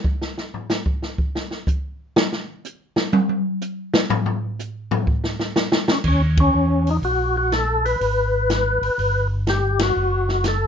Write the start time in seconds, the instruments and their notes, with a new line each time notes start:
0.04 kick
0.21 snare
0.38 snare
0.54 floor tom
0.70 snare, hi-hat pedal
0.86 kick
1.02 snare
1.18 kick
1.35 snare
1.51 snare
1.67 kick, hi-hat pedal
2.16 snare
2.32 snare
2.65 hi-hat pedal
2.96 snare
3.13 high tom
3.29 high tom
3.61 hi-hat pedal
3.94 snare
4.10 floor tom
4.26 floor tom
4.59 hi-hat pedal
4.91 floor tom
5.07 kick
5.24 snare
5.39 snare
5.56 snare, hi-hat pedal
5.72 snare
5.88 tonewheel organ C#4, snare
6.04 tonewheel organ D#2, kick, crash
6.08 tonewheel organ C#4
6.37 tonewheel organ C#4, kick, ride
6.54 tonewheel organ E2
6.87 tonewheel organ D#4, open hi-hat
7.02 tonewheel organ A#1 F#4, kick, open hi-hat
7.37 tonewheel organ F#4
7.52 tonewheel organ A4, snare, closed hi-hat
7.85 tonewheel organ B4, open hi-hat
8.01 tonewheel organ G#1, kick, open hi-hat
8.50 snare, closed hi-hat
8.82 tonewheel organ G#1, open hi-hat
8.98 tonewheel organ G1, kick, open hi-hat
9.47 tonewheel organ G4, snare, closed hi-hat
9.79 tonewheel organ F#4, snare, ride
9.96 tonewheel organ F#1
10.29 snare
10.44 tonewheel organ A4, snare, closed hi-hat